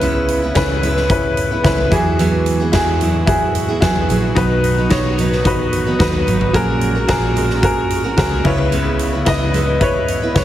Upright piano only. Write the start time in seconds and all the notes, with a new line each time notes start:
Already playing: C#3 C#4 E4 B4
0.55 C#4 E4 B4
1.09 C#4 E4 B4
1.63 C#4 E4 B4
1.90 E3 E4 F#4 G#4
2.72 E4 F#4 G#4
3.26 E4 F#4 G#4
3.80 E4 F#4 G#4
4.35 B2 D#4 F#4 B4
4.90 D#4 F#4 C#5
5.44 D#4 F#4 B4
5.99 D#4 F#4 B4
6.53 A#2 F#4 G#4 A#4
7.07 F#4 G#4 A#4
7.62 F#4 G#4 A#4
8.17 F#4 G#4 A#4
8.44 C#3 E4 B4 C#5
9.25 E4 B4 D#5
9.80 E4 B4 C#5
10.34 E4 B4 C#5